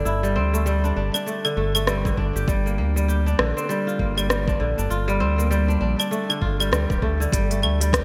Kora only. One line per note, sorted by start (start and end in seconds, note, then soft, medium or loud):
0.00 1.43 D3 medium
0.00 0.53 A3 medium
0.00 0.35 C4 medium
0.00 0.83 D4 medium
0.05 1.62 E4 medium
0.23 0.65 G3 medium
0.36 2.16 C4 medium
0.54 1.26 A3 medium
0.66 1.47 G3 medium
0.84 0.96 D4 medium
0.96 1.14 D4 medium
1.14 2.17 D4 medium
1.26 1.56 A3 medium
1.45 2.04 D3 medium
1.57 1.75 A3 medium
1.75 2.72 A3 medium
1.87 2.07 G3 medium
2.05 2.53 D3 medium
2.17 3.26 D4 medium
2.36 3.08 G4 medium
2.48 2.95 G3 loud
2.66 2.78 A#3 medium
2.78 3.99 A#3 medium
2.96 3.44 G3 medium
3.08 4.50 G4 medium
3.26 4.47 D4 medium
3.39 4.59 D3 medium
3.57 5.20 C4 medium
3.69 4.16 G3 medium
3.87 4.90 F4 medium
3.99 5.38 A#3 medium
4.17 4.28 G3 medium
4.30 4.65 G3 medium
4.48 4.78 D4 medium
4.60 6.28 D3 medium
4.78 5.68 D4 medium
4.90 6.41 F4 medium
5.08 5.49 G3 loud
5.20 7.00 C4 medium
5.38 6.17 A#3 medium
5.51 6.32 G3 medium
5.68 5.80 D4 medium
5.81 5.99 D4 medium
5.99 7.67 D4 medium
6.11 7.02 A3 medium
6.29 7.19 D3 medium
6.42 7.93 F4 medium
6.60 6.70 G3 medium
6.72 7.23 G3 medium
6.90 7.92 G4 medium
7.02 7.50 A3 medium
7.20 7.38 D3 medium
7.32 7.79 G3 loud
7.50 7.62 A3 medium
7.62 8.04 A3 medium
7.81 8.04 G3 medium
7.93 8.04 G4 medium